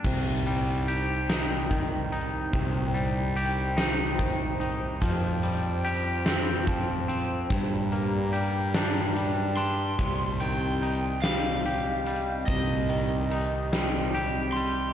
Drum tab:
CC |x-----|------|------|------|
HH |-xxxxx|xxxxxx|xxxxxx|xxxxxx|
SD |---o--|---o--|---o--|---o--|
BD |o---o-|o---o-|o---o-|o-----|

CC |------|------|
HH |xxxxxx|xxxxxx|
SD |---o--|---o--|
BD |o-----|o-----|